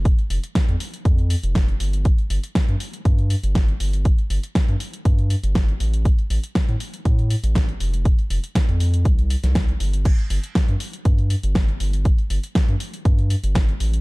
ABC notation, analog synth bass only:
X:1
M:4/4
L:1/16
Q:1/4=120
K:F
V:1 name="Analog synth bass" clef=bass
z2 F,,, z2 F,, z2 F,,2 z F,,,2 z G,,,2 | z2 G,,, z2 G,, z2 G,,2 z G,,,2 z G,,,2 | z2 G,,, z2 G,, z2 G,,2 z G,,,2 z A,,,2 | z2 A,,, z2 A,, z2 A,,2 z A,,,2 z F,,,2 |
z2 F,,, z2 F,,3 C,,2 z C,,2 z G,,,2 | z2 G,,, z2 G,, z2 G,,2 z G,,,2 z G,,,2 | z2 G,,, z2 G,, z2 G,,2 z G,,,2 z A,,,2 |]